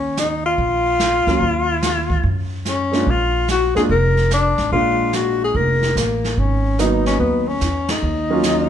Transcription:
Already playing: D#2 C#4
0.17 D#4, snare, hi-hat pedal
0.46 F4
0.58 A#1, brush sweep, kick
0.99 snare, hi-hat pedal
1.27 F#3 A#3 C#4 F4, muted upright bass stroke, kick, snare
1.41 D#2, brush sweep, kick
1.82 snare, hi-hat pedal
2.10 kick
2.23 F#2, brush sweep, kick
2.65 C#4, snare, hi-hat pedal
2.92 G#3 A#3 D4 F4, snare
3.07 A#1 F4, brush sweep, kick
3.48 F#4, snare, hi-hat pedal
3.75 F2 G#3 A#3 D4 F4 G#4, snare
3.89 F1 A#4, brush sweep, kick
4.17 snare
4.31 D4, snare, hi-hat pedal
4.58 G#1, snare
4.72 A#1 G#3 A#3 D4 F4, brush sweep, kick
5.13 F#4, snare, hi-hat pedal
5.44 G#4
5.55 F1 A#4, brush sweep, kick
5.83 snare
5.95 A1 A#3, snare, hi-hat pedal
6.24 snare
6.37 G#1 C#4, brush sweep, kick
6.78 F#3 A#3 B3 D#4, snare, hi-hat pedal
7.06 C#4, snare
7.20 D#2 B3, brush sweep, kick
7.48 C#4
7.61 E2, snare, hi-hat pedal
7.88 D#4, snare, ride
8.02 D#2, brush sweep
8.30 F#3 A#3 C#4 F4
8.43 snare, hi-hat pedal

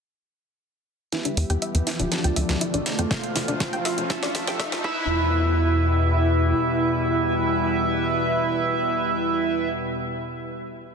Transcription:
1.12 E2 B2 E3 G3 B3 E4 G4 B4 E5, snare, closed hi-hat, riser
1.25 D4, closed hi-hat
1.37 E2, open hi-hat
1.50 E2 G5, closed hi-hat
1.62 E5, closed hi-hat
1.75 E2, closed hi-hat
1.87 F3 E4 F4, snare, open hi-hat
2.00 E1 D4, closed hi-hat
2.12 D3 A3 D4 F4 A4 D5, snare, closed hi-hat
2.24 D2 G5, closed hi-hat
2.36 D2 E5, open hi-hat
2.49 D2, snare, closed hi-hat
2.61 E4, closed hi-hat
2.74 A1 D4, closed hi-hat
2.86 A3 A4, snare, open hi-hat
2.99 F2 G5, closed hi-hat
3.11 A3 F4 C5 E5 F5, kick, snare, closed hi-hat
3.23 closed hi-hat
3.36 F1 E4, snare, open hi-hat
3.48 F1 D4, closed hi-hat
3.60 F3 F4, kick, snare, closed hi-hat
3.73 F1 G5, closed hi-hat
3.85 E5, snare, open hi-hat
3.98 F1, closed hi-hat
4.10 A3 E4 A4 E5, kick, snare, closed hi-hat
4.23 A1 D4, snare, closed hi-hat
4.35 A1, snare, open hi-hat
4.47 A1 G5, snare, closed hi-hat
4.60 E5, kick, snare, closed hi-hat
4.72 A1, snare, closed hi-hat
4.84 E2 B2 G3 E4 B4 E5, kick

